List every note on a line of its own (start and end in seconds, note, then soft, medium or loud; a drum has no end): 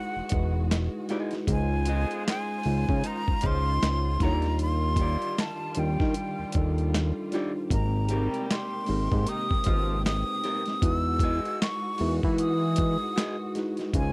0.00 0.31 G#3 medium
0.00 1.44 G#3 medium
0.00 0.32 D#4 medium
0.00 0.32 E4 medium
0.00 0.33 F#4 medium
0.00 1.44 F#4 medium
0.00 0.34 B4 medium
0.00 0.66 F#5 medium
0.16 0.22 E1 medium
0.29 0.89 E1 medium
0.29 0.96 G#3 medium
0.29 0.96 D#4 medium
0.29 0.96 E4 medium
0.29 0.97 F#4 medium
0.29 kick loud
0.29 closed hi-hat medium
0.34 0.97 B4 medium
0.71 muted clean electric guitar stroke soft
0.71 snare loud
0.71 clap medium
0.71 closed hi-hat medium
1.09 1.41 G#3 medium
1.09 1.41 D#4 medium
1.09 1.42 E4 medium
1.09 1.32 F#4 medium
1.09 1.42 F#4 medium
1.09 1.33 G#4 medium
1.09 1.43 B4 loud
1.09 1.33 D#5 loud
1.09 snare soft
1.09 closed hi-hat medium
1.31 snare soft
1.31 closed hi-hat soft
1.47 2.06 C#2 loud
1.47 2.44 G#3 medium
1.47 2.44 C#4 medium
1.47 2.45 D#4 medium
1.47 7.67 F4 medium
1.47 2.45 F4 medium
1.47 4.17 C5 medium
1.47 2.45 C5 medium
1.47 kick medium
1.47 closed hi-hat medium
1.52 2.24 G#5 medium
1.85 2.60 G#3 medium
1.85 2.23 F4 medium
1.85 2.60 G#4 medium
1.85 2.24 C5 medium
1.85 2.24 D#5 medium
1.85 closed hi-hat medium
2.11 closed hi-hat soft
2.28 3.08 G#5 loud
2.28 snare medium
2.28 clap medium
2.28 closed hi-hat medium
2.63 2.86 C#2 medium
2.63 3.30 G#3 medium
2.63 3.30 C#4 medium
2.63 3.30 D#4 medium
2.63 3.31 F4 medium
2.63 open hi-hat soft
2.68 3.31 C5 medium
2.89 3.03 C#3 medium
2.89 kick loud
3.03 3.34 D#3 medium
3.03 3.34 D#4 medium
3.03 3.48 A#5 loud
3.03 closed hi-hat medium
3.28 3.34 C#2 soft
3.28 kick medium
3.41 3.79 C#2 medium
3.41 3.73 F3 medium
3.41 4.20 G#3 medium
3.41 4.21 C#4 medium
3.41 4.21 D#4 medium
3.41 3.73 F4 medium
3.41 kick loud
3.41 closed hi-hat medium
3.45 4.22 F4 medium
3.45 4.22 C5 medium
3.45 4.24 C6 loud
3.83 4.18 C#2 loud
3.83 muted clean electric guitar stroke soft
3.83 snare loud
3.83 clap medium
3.83 closed hi-hat medium
4.20 5.17 D#2 medium
4.20 7.67 D#3 medium
4.20 7.67 G3 medium
4.20 5.47 G3 medium
4.20 5.47 D4 medium
4.20 5.47 D#4 medium
4.20 4.45 F4 loud
4.20 5.48 F4 medium
4.20 4.45 G4 loud
4.20 4.30 A4 medium
4.20 4.60 A#5 loud
4.20 kick loud
4.20 snare soft
4.20 closed hi-hat soft
4.25 4.46 D5 loud
4.31 5.52 A#4 medium
4.42 snare soft
4.42 closed hi-hat soft
4.59 5.42 C6 medium
4.59 closed hi-hat medium
4.96 5.35 F4 medium
4.96 kick medium
4.96 closed hi-hat medium
5.00 5.36 G4 medium
5.00 5.36 D5 medium
5.22 closed hi-hat soft
5.38 5.80 A5 medium
5.38 snare loud
5.38 clap medium
5.38 closed hi-hat medium
5.75 5.97 D#2 loud
5.75 6.41 G3 medium
5.75 6.41 D4 medium
5.75 6.42 D#4 medium
5.75 6.42 F4 medium
5.75 closed hi-hat medium
5.79 6.43 G4 medium
5.79 6.94 G5 medium
6.00 6.15 D#3 medium
6.00 kick loud
6.00 snare soft
6.14 closed hi-hat medium
6.39 6.45 D#2 soft
6.52 7.12 D#2 loud
6.52 7.19 G3 medium
6.52 7.19 D4 medium
6.52 7.20 D#4 medium
6.52 7.20 F4 medium
6.52 kick medium
6.52 closed hi-hat medium
6.57 7.21 A4 loud
6.78 closed hi-hat soft
6.93 muted clean electric guitar stroke soft
6.93 snare medium
6.93 clap medium
6.93 closed hi-hat medium
7.32 7.64 G3 medium
7.32 7.65 D4 medium
7.32 7.65 D#4 medium
7.32 7.51 F4 medium
7.32 7.66 F4 medium
7.32 7.51 G4 loud
7.32 7.66 C5 medium
7.32 7.52 D5 medium
7.32 snare soft
7.32 closed hi-hat medium
7.70 8.29 G#1 loud
7.70 10.79 C3 medium
7.70 8.67 G#3 medium
7.70 10.79 A#3 medium
7.70 8.67 C4 medium
7.70 8.68 D#4 medium
7.70 10.79 G4 medium
7.70 8.68 G4 medium
7.70 8.69 A#4 medium
7.70 8.46 A#5 medium
7.70 kick loud
7.70 closed hi-hat medium
8.09 8.84 G3 medium
8.09 8.47 C4 medium
8.09 8.84 G4 medium
8.09 8.47 G4 medium
8.09 8.47 A#4 medium
8.09 closed hi-hat medium
8.34 closed hi-hat soft
8.51 9.30 C6 medium
8.51 snare loud
8.51 clap medium
8.51 closed hi-hat medium
8.86 9.09 G#1 medium
8.86 9.52 G#3 medium
8.86 9.53 C4 medium
8.86 9.53 D#4 medium
8.86 9.54 G4 medium
8.86 open hi-hat soft
8.90 9.54 A#4 medium
9.12 9.26 G#2 loud
9.12 kick medium
9.26 9.58 D#3 medium
9.26 9.58 D#4 medium
9.26 10.05 D#6 loud
9.26 closed hi-hat medium
9.51 9.57 G#1 soft
9.51 kick loud
9.64 10.24 G#1 medium
9.64 9.97 F3 medium
9.64 10.62 G#3 medium
9.64 10.62 C4 medium
9.64 10.63 D#4 medium
9.64 9.97 F4 medium
9.64 10.63 G4 medium
9.64 kick loud
9.64 closed hi-hat medium
9.69 9.75 B4 medium
9.75 10.67 C5 medium
10.06 10.86 D#6 loud
10.06 muted clean electric guitar stroke soft
10.06 snare loud
10.06 clap medium
10.06 closed hi-hat medium
10.44 10.62 C4 medium
10.44 10.63 G4 loud
10.44 10.63 A#4 medium
10.44 snare soft
10.44 closed hi-hat medium
10.66 snare soft
10.66 closed hi-hat soft
10.82 11.40 E2 loud
10.82 11.78 G#3 medium
10.82 13.91 G#3 medium
10.82 11.79 D#4 medium
10.82 11.79 E4 medium
10.82 13.91 F#4 medium
10.82 11.80 F#4 medium
10.82 11.80 B4 loud
10.82 11.63 E6 loud
10.82 kick loud
10.82 closed hi-hat medium
11.20 11.59 F#4 medium
11.20 11.59 G#4 medium
11.20 kick loud
11.20 closed hi-hat medium
11.24 11.59 D#5 loud
11.45 closed hi-hat soft
11.62 12.14 C#6 medium
11.62 snare loud
11.62 clap medium
11.62 closed hi-hat medium
11.98 12.21 E2 medium
11.98 12.64 G#3 medium
11.98 12.64 D#4 medium
11.98 12.65 E4 medium
11.98 12.65 F#4 medium
11.98 12.08 A#4 medium
11.98 open hi-hat medium
12.09 12.69 B4 medium
12.23 12.97 E3 loud
12.23 kick loud
12.38 13.52 D#6 loud
12.38 closed hi-hat medium
12.76 13.42 G#3 medium
12.76 13.42 D#4 medium
12.76 13.43 E4 medium
12.76 13.43 F#4 medium
12.76 kick loud
12.76 closed hi-hat medium
12.80 13.44 B4 medium
13.16 13.34 F#4 medium
13.16 13.35 G#4 medium
13.16 13.35 D#5 medium
13.16 snare loud
13.16 clap medium
13.16 closed hi-hat medium
13.55 13.88 G#3 medium
13.55 13.88 D#4 medium
13.55 13.88 E4 medium
13.55 13.89 F#4 medium
13.55 13.89 B4 medium
13.55 snare soft
13.55 closed hi-hat medium
13.77 snare soft
13.77 closed hi-hat soft
13.93 14.13 C#2 loud
13.93 14.13 G#3 medium
13.93 14.13 C#4 medium
13.93 14.13 D#4 medium
13.93 14.13 F4 medium
13.93 14.13 C5 medium
13.93 14.13 G#5 medium
13.93 kick loud
13.93 closed hi-hat medium